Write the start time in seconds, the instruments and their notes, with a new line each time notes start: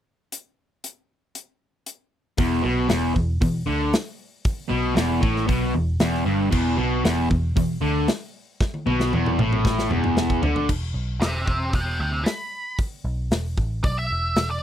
0.32 closed hi-hat
0.84 closed hi-hat
1.35 closed hi-hat
1.86 closed hi-hat
2.38 picked electric bass E1, distorted electric guitar E2, kick, open hi-hat
2.62 picked electric bass B1, distorted electric guitar B2
2.88 picked electric bass E1, distorted electric guitar E2, snare, open hi-hat
3.15 picked electric bass E1, distorted electric guitar E2, kick
3.41 picked electric bass E1, distorted electric guitar E2, kick, open hi-hat
3.66 picked electric bass D2, distorted electric guitar D3
3.93 snare, open hi-hat
4.45 kick, open hi-hat
4.69 picked electric bass B1, distorted electric guitar B2
4.95 picked electric bass E1, distorted electric guitar E2, snare, open hi-hat
5.21 picked electric bass A1, distorted electric guitar A2, kick
5.36 snare
5.47 picked electric bass B1, distorted electric guitar B2, kick, open hi-hat
5.74 picked electric bass E1, distorted electric guitar E2
6.00 picked electric bass E1, distorted electric guitar E2, snare, open hi-hat
6.14 snare
6.26 picked electric bass G1, distorted electric guitar G2
6.51 picked electric bass E1, distorted electric guitar E2, kick, crash
6.77 picked electric bass B1, distorted electric guitar B2
7.04 picked electric bass E1, distorted electric guitar E2, snare, open hi-hat
7.30 picked electric bass E1, distorted electric guitar E2, kick
7.56 picked electric bass E1, distorted electric guitar E2, kick, open hi-hat
7.82 picked electric bass D2, distorted electric guitar D3
8.08 snare, open hi-hat
8.61 kick, snare
8.74 high tom
8.86 picked electric bass B1, distorted electric guitar B2, high tom
9.00 snare
9.13 picked electric bass E1, distorted electric guitar E2, mid tom
9.26 mid tom
9.39 picked electric bass A1, distorted electric guitar A2, mid tom
9.53 mid tom
9.65 kick, snare
9.79 snare
9.90 picked electric bass E1, distorted electric guitar E2, mid tom
10.04 mid tom
10.17 snare
10.30 kick
10.42 picked electric bass D2, distorted electric guitar D3, floor tom
10.56 floor tom
10.69 picked electric bass E1, kick, crash
10.94 picked electric bass B1
11.20 picked electric bass E1, lead electric guitar G4 E5, snare, open hi-hat
11.46 picked electric bass E1, lead electric guitar G4 E5, kick
11.73 picked electric bass E1, lead electric guitar E5 G5, kick, open hi-hat
11.99 picked electric bass D2, lead electric guitar E5 G5
12.24 lead electric guitar B5, snare, open hi-hat
12.78 kick, open hi-hat
13.05 picked electric bass B1
13.31 picked electric bass E1, snare, open hi-hat
13.57 picked electric bass A1, kick
13.84 picked electric bass B1, lead electric guitar D5, kick, open hi-hat
13.99 lead electric guitar E5
14.11 picked electric bass E1
14.36 picked electric bass E1, snare, open hi-hat
14.50 lead electric guitar D5